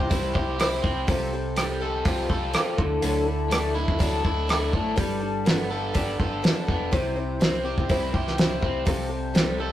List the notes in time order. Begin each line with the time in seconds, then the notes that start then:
Already playing: C3 C4 G4
0.09 C2 C3 E3 G3 C4 E4 C5, kick, open hi-hat
0.34 C2 G3 C4 E4 G4 C5, kick
0.59 G3 C4 E4 C5, cross-stick, open hi-hat
0.83 C2 G3 C4 E4 C5, kick
1.07 C2 C3 F3 G3 C4 G4 A4, kick, open hi-hat
1.33 G3 C4 G4 A4
1.56 G3 C4 G4 A4, cross-stick, open hi-hat
1.80 G3 C4 G4 A4
2.05 C2 C3 F3 G3 C4 F4 G4 A4, kick, open hi-hat
2.29 C2 G3 C4 G4 A4, kick
2.52 G3 C4 F4 G4 A4, cross-stick, open hi-hat
2.77 D2 D3 A3 D4 E4 A4, kick
3.02 D2 D3 F#3 A3 D4 E4 A4, open hi-hat
3.26 A3 D4 E4 A4
3.51 A3 D4 E4 A4, cross-stick, open hi-hat
3.75 A3 D4 E4 A4
3.88 D2, kick
3.98 D2 D3 F#3 A3 D4 E4 A4, kick, open hi-hat
4.23 D2 A3 D4 E4 A4, kick
4.47 A3 D4 E4 A4, cross-stick, open hi-hat
4.72 G#1 A3 D4 E4 A4, kick
4.96 G1 G3 B3 D4 G4 A4, kick, open hi-hat
5.20 D4 G4 A4
5.45 B3 D4 G4 A4, snare, open hi-hat
5.70 D4 G4 A4
5.94 G1 G3 B3 D4 G4 A4, kick, open hi-hat
6.18 G1 D4 G4 A4, kick
6.42 B3 D4 G4 A4, snare, open hi-hat
6.67 E1 B3 D4 G4 A4, kick
6.91 C2 C3 E3 G3 C4 E4 C5, kick, open hi-hat
7.16 G3 C4 E4 C5
7.39 G3 C4 E4 C5, snare, open hi-hat
7.64 G3 C4 E4 G4 C5
7.77 C2, kick
7.89 C2 C3 E3 G3 C4 E4 C5, kick, open hi-hat
8.12 C2 G3 C4 E4 G4 C5, kick
8.27 snare
8.37 G3 C4 E4 C5, snare, open hi-hat
8.61 C2 G3 C4 E4 C5, kick
8.85 C2 C3 F3 G3 C4 G4 A4, kick, open hi-hat
9.09 G3 C4 G4 A4
9.33 G3 C4 G4 A4, snare, open hi-hat
9.58 G3 C4 G4 A4